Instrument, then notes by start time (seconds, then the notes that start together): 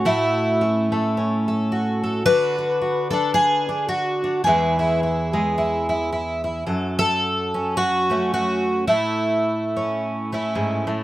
twelve-string acoustic guitar
Already playing: A3 F#4
0.05 A2 E4
0.61 C#4
0.92 A3
1.17 C#4
1.48 A4
1.72 F#4
2.04 A4
2.26 D3 D4 F#4 B4
2.58 F#4
2.82 F#4
3.11 D4 A4
3.34 G#4
3.69 D4
3.89 F#4
4.24 D4
4.44 E2 G#3 E4 G#4
4.79 E4
5.03 E4
5.33 G#3
5.58 E4
5.89 E4
6.13 E4
6.44 E4
6.67 F#2 A4
6.99 A4
7.54 C#4
7.77 F#4
8.10 A3 C#4
8.34 F#4
8.88 A2 E4
9.76 C#4
10.32 A3 C#4 E4
10.55 G#2
10.87 A2